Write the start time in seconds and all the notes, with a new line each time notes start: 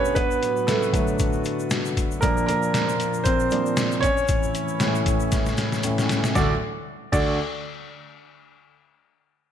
Already playing: G2 B2 D3 G3 A3 B3 C#4 D4 G4 A4 B4 C#5
0.05 shaker
0.15 A2 F#3 B3 F#4 B4, kick, closed hi-hat, shaker
0.31 shaker
0.43 closed hi-hat, shaker
0.57 shaker
0.67 A3 A4, snare, closed hi-hat, shaker
0.83 shaker
0.93 D3 F#3 A3, kick, closed hi-hat, shaker
1.07 shaker
1.19 kick, closed hi-hat, shaker
1.33 shaker
1.44 closed hi-hat, shaker
1.60 shaker
1.70 snare, closed hi-hat, shaker
1.85 shaker
1.97 kick, closed hi-hat, shaker
2.11 shaker
2.21 A#2 F3 A#3 D4 F4 A#4, kick, closed hi-hat, shaker
2.37 shaker
2.46 A#3 A#4, closed hi-hat, shaker
2.62 shaker
2.74 snare, closed hi-hat, shaker
2.89 shaker
3.00 closed hi-hat, shaker
3.14 shaker
3.24 C4 C5, kick, closed hi-hat, shaker
3.40 shaker
3.50 A#2 F3 D4, closed hi-hat, shaker
3.66 shaker
3.77 snare, closed hi-hat, shaker
3.92 shaker
4.01 A2 E3 C#4 E4 C#5, kick, closed hi-hat, shaker
4.17 shaker
4.28 kick, closed hi-hat, shaker
4.43 shaker
4.55 closed hi-hat, shaker
4.68 shaker
4.80 A2 E3 C#4, snare, closed hi-hat, shaker
4.95 shaker
5.06 kick, closed hi-hat, shaker
5.20 shaker
5.32 kick, snare, closed hi-hat, shaker
5.46 snare, shaker
5.57 snare, closed hi-hat, shaker
5.72 snare, shaker
5.83 A2 E3 C#4, closed hi-hat, shaker
5.98 snare, shaker
6.09 snare, closed hi-hat, shaker
6.24 snare, shaker
6.35 D2 A2 F#3 D4 F#4 A4 D5, kick, snare, shaker
7.12 D2 D4 F#4 A4 D5, kick, crash, shaker